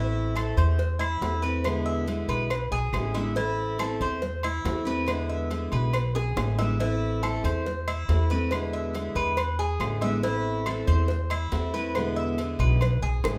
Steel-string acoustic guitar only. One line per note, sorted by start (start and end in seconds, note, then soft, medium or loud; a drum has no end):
0.00 0.34 E3 medium
0.00 0.35 A3 medium
0.00 0.35 C4 medium
0.00 0.36 E4 medium
0.35 0.77 E3 medium
0.35 0.78 A3 medium
0.35 0.78 C4 medium
0.35 0.78 E4 medium
0.78 muted steel-string acoustic guitar stroke medium
1.21 1.42 E3 medium
1.21 1.43 A3 soft
1.21 1.42 C4 soft
1.21 1.41 E4 medium
1.42 1.64 A3 medium
1.42 1.64 C4 medium
1.42 1.63 E4 medium
1.64 2.07 B2 medium
1.64 2.05 D3 medium
1.64 2.06 G#3 medium
1.64 2.06 B3 medium
1.64 2.07 E4 medium
2.06 2.49 D3 soft
2.06 2.49 G#3 medium
2.06 2.50 B3 medium
2.06 2.50 E4 medium
2.50 muted steel-string acoustic guitar stroke medium
2.93 3.14 D3 soft
2.93 3.14 G#3 medium
2.93 3.14 B3 medium
2.93 3.13 E4 medium
3.15 3.35 D3 medium
3.15 3.36 G#3 medium
3.15 3.35 B3 medium
3.15 3.35 E4 medium
3.35 3.77 E3 medium
3.35 3.78 A3 medium
3.35 3.79 C4 medium
3.35 3.79 E4 medium
3.78 4.21 E3 medium
3.78 4.21 A3 medium
3.78 4.22 C4 medium
3.78 4.22 E4 medium
4.22 muted steel-string acoustic guitar stroke medium
4.65 4.86 E3 medium
4.65 4.86 A3 medium
4.65 4.85 C4 medium
4.65 4.84 E4 soft
4.85 5.07 A3 medium
4.85 5.07 C4 medium
4.85 5.06 E4 medium
5.06 5.49 B2 medium
5.06 5.49 D3 medium
5.06 5.50 G#3 medium
5.06 5.50 B3 medium
5.06 5.50 E4 medium
5.50 5.92 D3 medium
5.50 5.92 G#3 medium
5.50 5.93 B3 medium
5.50 5.93 E4 medium
5.93 muted steel-string acoustic guitar stroke medium
6.36 6.57 D3 soft
6.36 6.57 G#3 soft
6.36 6.58 B3 medium
6.36 6.57 E4 medium
6.58 6.79 D3 medium
6.58 6.80 G#3 medium
6.58 6.80 B3 medium
6.58 6.79 E4 medium
6.79 7.21 E3 medium
6.79 7.22 A3 medium
6.79 7.22 C4 medium
6.79 7.23 E4 medium
7.23 7.65 E3 soft
7.23 7.65 A3 medium
7.23 7.65 C4 soft
7.23 7.66 E4 medium
7.66 muted steel-string acoustic guitar stroke medium
8.09 8.30 E3 soft
8.09 8.30 A3 medium
8.09 8.30 C4 medium
8.09 8.29 E4 medium
8.31 8.52 A3 medium
8.31 8.51 C4 medium
8.31 8.51 E4 medium
8.51 8.94 B2 medium
8.51 8.92 D3 medium
8.51 8.93 G#3 medium
8.51 8.94 B3 medium
8.51 8.95 E4 medium
8.94 9.36 D3 soft
8.94 9.36 G#3 medium
8.94 9.37 B3 medium
8.94 9.37 E4 medium
9.37 muted steel-string acoustic guitar stroke medium
9.80 10.01 D3 medium
9.80 10.01 G#3 soft
9.80 10.01 B3 medium
9.80 10.00 E4 medium
10.01 10.23 D3 medium
10.01 10.23 G#3 medium
10.01 10.23 B3 medium
10.01 10.22 E4 medium
10.23 10.66 E3 medium
10.23 10.66 A3 medium
10.23 10.66 C4 medium
10.23 10.66 E4 medium
10.67 11.09 E3 medium
10.67 11.09 A3 medium
10.67 11.09 C4 medium
10.67 11.10 E4 medium
11.10 muted steel-string acoustic guitar stroke medium
11.52 11.73 E3 soft
11.52 11.73 A3 soft
11.52 11.73 C4 medium
11.52 11.73 E4 medium
11.74 11.95 A3 medium
11.74 11.95 C4 medium
11.74 11.95 E4 medium
11.95 12.38 B2 medium
11.95 12.37 D3 medium
11.95 12.38 G#3 medium
11.95 12.38 B3 medium
11.95 12.39 E4 medium
12.38 12.80 D3 medium
12.38 12.81 G#3 medium
12.38 12.81 B3 medium
12.38 12.81 E4 soft
12.82 muted steel-string acoustic guitar stroke medium
13.25 13.38 D3 soft
13.25 13.38 G#3 medium
13.25 13.38 B3 medium
13.25 13.38 E4 soft